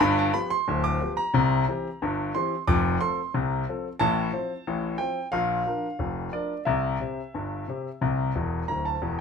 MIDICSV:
0, 0, Header, 1, 2, 480
1, 0, Start_track
1, 0, Key_signature, -1, "major"
1, 0, Tempo, 663717
1, 22, Time_signature, 2, 2, 24, 8
1, 3862, Tempo, 671892
1, 6623, End_track
2, 0, Start_track
2, 0, Title_t, "Grand piano"
2, 0, Program_c, 0, 0
2, 0, Note_on_c, 0, 83, 127
2, 1, Note_on_c, 0, 31, 113
2, 3, Note_on_c, 0, 43, 124
2, 130, Note_off_c, 0, 83, 0
2, 135, Note_on_c, 0, 81, 103
2, 213, Note_off_c, 0, 31, 0
2, 215, Note_off_c, 0, 43, 0
2, 243, Note_on_c, 0, 83, 111
2, 244, Note_on_c, 0, 53, 66
2, 249, Note_on_c, 0, 59, 64
2, 249, Note_on_c, 0, 67, 60
2, 258, Note_off_c, 0, 81, 0
2, 365, Note_on_c, 0, 84, 116
2, 372, Note_off_c, 0, 83, 0
2, 381, Note_off_c, 0, 53, 0
2, 384, Note_off_c, 0, 59, 0
2, 384, Note_off_c, 0, 67, 0
2, 490, Note_on_c, 0, 26, 103
2, 495, Note_on_c, 0, 38, 92
2, 601, Note_off_c, 0, 84, 0
2, 606, Note_on_c, 0, 86, 113
2, 699, Note_off_c, 0, 26, 0
2, 701, Note_off_c, 0, 38, 0
2, 736, Note_on_c, 0, 53, 65
2, 736, Note_on_c, 0, 59, 55
2, 739, Note_on_c, 0, 67, 59
2, 804, Note_off_c, 0, 86, 0
2, 845, Note_on_c, 0, 82, 105
2, 869, Note_off_c, 0, 53, 0
2, 869, Note_off_c, 0, 59, 0
2, 872, Note_off_c, 0, 67, 0
2, 968, Note_on_c, 0, 36, 96
2, 972, Note_on_c, 0, 48, 116
2, 1177, Note_off_c, 0, 36, 0
2, 1180, Note_off_c, 0, 48, 0
2, 1219, Note_on_c, 0, 52, 57
2, 1219, Note_on_c, 0, 60, 60
2, 1226, Note_on_c, 0, 67, 68
2, 1352, Note_off_c, 0, 52, 0
2, 1352, Note_off_c, 0, 60, 0
2, 1356, Note_off_c, 0, 67, 0
2, 1462, Note_on_c, 0, 43, 90
2, 1468, Note_on_c, 0, 31, 92
2, 1522, Note_off_c, 0, 82, 0
2, 1664, Note_off_c, 0, 43, 0
2, 1668, Note_off_c, 0, 31, 0
2, 1697, Note_on_c, 0, 84, 102
2, 1702, Note_on_c, 0, 52, 62
2, 1706, Note_on_c, 0, 67, 67
2, 1707, Note_on_c, 0, 60, 59
2, 1833, Note_off_c, 0, 52, 0
2, 1836, Note_off_c, 0, 67, 0
2, 1837, Note_off_c, 0, 60, 0
2, 1890, Note_off_c, 0, 84, 0
2, 1934, Note_on_c, 0, 86, 119
2, 1936, Note_on_c, 0, 41, 109
2, 1939, Note_on_c, 0, 29, 98
2, 2141, Note_off_c, 0, 41, 0
2, 2143, Note_off_c, 0, 29, 0
2, 2164, Note_off_c, 0, 86, 0
2, 2174, Note_on_c, 0, 84, 108
2, 2178, Note_on_c, 0, 53, 55
2, 2178, Note_on_c, 0, 60, 58
2, 2179, Note_on_c, 0, 69, 72
2, 2310, Note_off_c, 0, 53, 0
2, 2310, Note_off_c, 0, 60, 0
2, 2311, Note_off_c, 0, 69, 0
2, 2404, Note_off_c, 0, 84, 0
2, 2418, Note_on_c, 0, 48, 91
2, 2419, Note_on_c, 0, 36, 88
2, 2622, Note_off_c, 0, 48, 0
2, 2623, Note_off_c, 0, 36, 0
2, 2670, Note_on_c, 0, 53, 53
2, 2672, Note_on_c, 0, 60, 56
2, 2676, Note_on_c, 0, 69, 65
2, 2798, Note_off_c, 0, 53, 0
2, 2800, Note_off_c, 0, 60, 0
2, 2803, Note_off_c, 0, 69, 0
2, 2889, Note_on_c, 0, 81, 127
2, 2894, Note_on_c, 0, 33, 104
2, 2897, Note_on_c, 0, 45, 106
2, 3099, Note_off_c, 0, 33, 0
2, 3101, Note_off_c, 0, 45, 0
2, 3130, Note_on_c, 0, 53, 52
2, 3133, Note_on_c, 0, 72, 67
2, 3136, Note_on_c, 0, 60, 53
2, 3264, Note_off_c, 0, 53, 0
2, 3267, Note_off_c, 0, 72, 0
2, 3269, Note_off_c, 0, 60, 0
2, 3380, Note_on_c, 0, 33, 90
2, 3380, Note_on_c, 0, 45, 76
2, 3584, Note_off_c, 0, 33, 0
2, 3584, Note_off_c, 0, 45, 0
2, 3585, Note_off_c, 0, 81, 0
2, 3602, Note_on_c, 0, 79, 98
2, 3605, Note_on_c, 0, 53, 55
2, 3609, Note_on_c, 0, 60, 56
2, 3615, Note_on_c, 0, 72, 62
2, 3742, Note_off_c, 0, 53, 0
2, 3745, Note_off_c, 0, 60, 0
2, 3749, Note_off_c, 0, 72, 0
2, 3802, Note_off_c, 0, 79, 0
2, 3845, Note_on_c, 0, 77, 108
2, 3851, Note_on_c, 0, 34, 89
2, 3853, Note_on_c, 0, 46, 98
2, 4058, Note_off_c, 0, 34, 0
2, 4059, Note_off_c, 0, 46, 0
2, 4093, Note_on_c, 0, 53, 54
2, 4102, Note_on_c, 0, 62, 53
2, 4103, Note_on_c, 0, 70, 65
2, 4227, Note_off_c, 0, 53, 0
2, 4233, Note_off_c, 0, 62, 0
2, 4234, Note_off_c, 0, 70, 0
2, 4327, Note_on_c, 0, 29, 77
2, 4329, Note_on_c, 0, 41, 70
2, 4536, Note_off_c, 0, 29, 0
2, 4537, Note_off_c, 0, 41, 0
2, 4543, Note_off_c, 0, 77, 0
2, 4569, Note_on_c, 0, 74, 83
2, 4572, Note_on_c, 0, 53, 46
2, 4575, Note_on_c, 0, 62, 47
2, 4575, Note_on_c, 0, 70, 61
2, 4706, Note_off_c, 0, 53, 0
2, 4708, Note_off_c, 0, 62, 0
2, 4708, Note_off_c, 0, 70, 0
2, 4765, Note_off_c, 0, 74, 0
2, 4800, Note_on_c, 0, 76, 88
2, 4809, Note_on_c, 0, 48, 84
2, 4810, Note_on_c, 0, 36, 96
2, 5017, Note_off_c, 0, 36, 0
2, 5017, Note_off_c, 0, 48, 0
2, 5049, Note_on_c, 0, 48, 50
2, 5054, Note_on_c, 0, 67, 51
2, 5058, Note_on_c, 0, 60, 50
2, 5184, Note_off_c, 0, 48, 0
2, 5187, Note_off_c, 0, 67, 0
2, 5190, Note_off_c, 0, 60, 0
2, 5294, Note_on_c, 0, 43, 69
2, 5297, Note_on_c, 0, 31, 74
2, 5501, Note_off_c, 0, 43, 0
2, 5502, Note_off_c, 0, 31, 0
2, 5534, Note_on_c, 0, 48, 47
2, 5543, Note_on_c, 0, 60, 54
2, 5544, Note_on_c, 0, 67, 59
2, 5668, Note_off_c, 0, 48, 0
2, 5674, Note_off_c, 0, 60, 0
2, 5675, Note_off_c, 0, 67, 0
2, 5772, Note_on_c, 0, 48, 79
2, 5775, Note_on_c, 0, 36, 86
2, 5980, Note_off_c, 0, 48, 0
2, 5981, Note_off_c, 0, 36, 0
2, 6014, Note_on_c, 0, 40, 75
2, 6017, Note_on_c, 0, 28, 82
2, 6154, Note_off_c, 0, 76, 0
2, 6196, Note_off_c, 0, 40, 0
2, 6198, Note_off_c, 0, 28, 0
2, 6249, Note_on_c, 0, 82, 91
2, 6250, Note_on_c, 0, 26, 71
2, 6256, Note_on_c, 0, 38, 69
2, 6372, Note_on_c, 0, 81, 82
2, 6375, Note_off_c, 0, 82, 0
2, 6435, Note_off_c, 0, 26, 0
2, 6438, Note_off_c, 0, 38, 0
2, 6490, Note_on_c, 0, 40, 75
2, 6491, Note_on_c, 0, 28, 83
2, 6604, Note_off_c, 0, 81, 0
2, 6623, Note_off_c, 0, 28, 0
2, 6623, Note_off_c, 0, 40, 0
2, 6623, End_track
0, 0, End_of_file